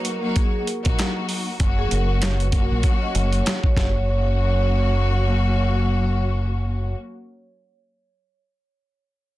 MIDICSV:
0, 0, Header, 1, 5, 480
1, 0, Start_track
1, 0, Key_signature, 6, "major"
1, 0, Tempo, 618557
1, 1242, Time_signature, 4, 2, 24, 8
1, 7274, End_track
2, 0, Start_track
2, 0, Title_t, "Vibraphone"
2, 0, Program_c, 0, 11
2, 40, Note_on_c, 0, 70, 79
2, 257, Note_off_c, 0, 70, 0
2, 294, Note_on_c, 0, 68, 79
2, 504, Note_off_c, 0, 68, 0
2, 518, Note_on_c, 0, 70, 71
2, 877, Note_off_c, 0, 70, 0
2, 1383, Note_on_c, 0, 68, 89
2, 1472, Note_off_c, 0, 68, 0
2, 1483, Note_on_c, 0, 70, 86
2, 1699, Note_off_c, 0, 70, 0
2, 1715, Note_on_c, 0, 73, 87
2, 1844, Note_off_c, 0, 73, 0
2, 1864, Note_on_c, 0, 71, 74
2, 1950, Note_on_c, 0, 70, 74
2, 1953, Note_off_c, 0, 71, 0
2, 2172, Note_off_c, 0, 70, 0
2, 2198, Note_on_c, 0, 73, 73
2, 2326, Note_off_c, 0, 73, 0
2, 2343, Note_on_c, 0, 75, 73
2, 2432, Note_off_c, 0, 75, 0
2, 2443, Note_on_c, 0, 73, 75
2, 2894, Note_off_c, 0, 73, 0
2, 2924, Note_on_c, 0, 73, 80
2, 4572, Note_off_c, 0, 73, 0
2, 7274, End_track
3, 0, Start_track
3, 0, Title_t, "String section"
3, 0, Program_c, 1, 48
3, 0, Note_on_c, 1, 54, 96
3, 0, Note_on_c, 1, 58, 94
3, 0, Note_on_c, 1, 63, 94
3, 0, Note_on_c, 1, 66, 102
3, 143, Note_off_c, 1, 54, 0
3, 146, Note_off_c, 1, 58, 0
3, 149, Note_off_c, 1, 63, 0
3, 152, Note_off_c, 1, 66, 0
3, 154, Note_on_c, 1, 54, 103
3, 160, Note_on_c, 1, 58, 86
3, 166, Note_on_c, 1, 63, 89
3, 172, Note_on_c, 1, 66, 109
3, 484, Note_off_c, 1, 54, 0
3, 487, Note_off_c, 1, 58, 0
3, 490, Note_off_c, 1, 63, 0
3, 493, Note_off_c, 1, 66, 0
3, 652, Note_on_c, 1, 54, 96
3, 658, Note_on_c, 1, 58, 81
3, 664, Note_on_c, 1, 63, 93
3, 669, Note_on_c, 1, 66, 104
3, 1197, Note_off_c, 1, 54, 0
3, 1200, Note_off_c, 1, 58, 0
3, 1203, Note_off_c, 1, 63, 0
3, 1205, Note_off_c, 1, 66, 0
3, 1239, Note_on_c, 1, 54, 92
3, 1246, Note_on_c, 1, 58, 80
3, 1252, Note_on_c, 1, 61, 81
3, 1258, Note_on_c, 1, 66, 113
3, 1913, Note_off_c, 1, 54, 0
3, 1916, Note_off_c, 1, 58, 0
3, 1919, Note_off_c, 1, 61, 0
3, 1922, Note_off_c, 1, 66, 0
3, 1959, Note_on_c, 1, 54, 102
3, 1964, Note_on_c, 1, 58, 93
3, 1970, Note_on_c, 1, 61, 90
3, 1976, Note_on_c, 1, 66, 114
3, 2908, Note_off_c, 1, 54, 0
3, 2911, Note_off_c, 1, 58, 0
3, 2914, Note_off_c, 1, 61, 0
3, 2916, Note_off_c, 1, 66, 0
3, 2918, Note_on_c, 1, 54, 90
3, 2920, Note_on_c, 1, 58, 82
3, 2923, Note_on_c, 1, 61, 84
3, 2926, Note_on_c, 1, 66, 102
3, 5372, Note_off_c, 1, 54, 0
3, 5375, Note_off_c, 1, 58, 0
3, 5378, Note_off_c, 1, 61, 0
3, 5380, Note_off_c, 1, 66, 0
3, 7274, End_track
4, 0, Start_track
4, 0, Title_t, "Fingered electric bass"
4, 0, Program_c, 2, 33
4, 668, Note_on_c, 2, 34, 88
4, 747, Note_off_c, 2, 34, 0
4, 1244, Note_on_c, 2, 30, 105
4, 1439, Note_off_c, 2, 30, 0
4, 1486, Note_on_c, 2, 30, 94
4, 2073, Note_off_c, 2, 30, 0
4, 2106, Note_on_c, 2, 34, 87
4, 2186, Note_off_c, 2, 34, 0
4, 2446, Note_on_c, 2, 30, 90
4, 2641, Note_off_c, 2, 30, 0
4, 2924, Note_on_c, 2, 30, 93
4, 5379, Note_off_c, 2, 30, 0
4, 7274, End_track
5, 0, Start_track
5, 0, Title_t, "Drums"
5, 37, Note_on_c, 9, 42, 77
5, 115, Note_off_c, 9, 42, 0
5, 277, Note_on_c, 9, 42, 76
5, 281, Note_on_c, 9, 36, 93
5, 355, Note_off_c, 9, 42, 0
5, 359, Note_off_c, 9, 36, 0
5, 523, Note_on_c, 9, 42, 72
5, 601, Note_off_c, 9, 42, 0
5, 659, Note_on_c, 9, 42, 47
5, 666, Note_on_c, 9, 36, 99
5, 737, Note_off_c, 9, 42, 0
5, 744, Note_off_c, 9, 36, 0
5, 765, Note_on_c, 9, 42, 85
5, 773, Note_on_c, 9, 38, 119
5, 775, Note_on_c, 9, 39, 93
5, 843, Note_off_c, 9, 42, 0
5, 850, Note_off_c, 9, 38, 0
5, 852, Note_off_c, 9, 39, 0
5, 998, Note_on_c, 9, 46, 47
5, 1076, Note_off_c, 9, 46, 0
5, 1240, Note_on_c, 9, 42, 88
5, 1242, Note_on_c, 9, 36, 116
5, 1318, Note_off_c, 9, 42, 0
5, 1319, Note_off_c, 9, 36, 0
5, 1484, Note_on_c, 9, 42, 73
5, 1561, Note_off_c, 9, 42, 0
5, 1720, Note_on_c, 9, 42, 85
5, 1727, Note_on_c, 9, 38, 113
5, 1729, Note_on_c, 9, 39, 93
5, 1798, Note_off_c, 9, 42, 0
5, 1805, Note_off_c, 9, 38, 0
5, 1807, Note_off_c, 9, 39, 0
5, 1863, Note_on_c, 9, 42, 56
5, 1941, Note_off_c, 9, 42, 0
5, 1958, Note_on_c, 9, 42, 76
5, 1961, Note_on_c, 9, 36, 99
5, 2035, Note_off_c, 9, 42, 0
5, 2038, Note_off_c, 9, 36, 0
5, 2197, Note_on_c, 9, 42, 74
5, 2201, Note_on_c, 9, 36, 93
5, 2275, Note_off_c, 9, 42, 0
5, 2279, Note_off_c, 9, 36, 0
5, 2444, Note_on_c, 9, 42, 70
5, 2521, Note_off_c, 9, 42, 0
5, 2580, Note_on_c, 9, 42, 46
5, 2658, Note_off_c, 9, 42, 0
5, 2686, Note_on_c, 9, 42, 85
5, 2694, Note_on_c, 9, 38, 117
5, 2696, Note_on_c, 9, 39, 93
5, 2764, Note_off_c, 9, 42, 0
5, 2771, Note_off_c, 9, 38, 0
5, 2773, Note_off_c, 9, 39, 0
5, 2821, Note_on_c, 9, 36, 88
5, 2898, Note_off_c, 9, 36, 0
5, 2922, Note_on_c, 9, 36, 101
5, 2929, Note_on_c, 9, 38, 84
5, 3000, Note_off_c, 9, 36, 0
5, 3006, Note_off_c, 9, 38, 0
5, 7274, End_track
0, 0, End_of_file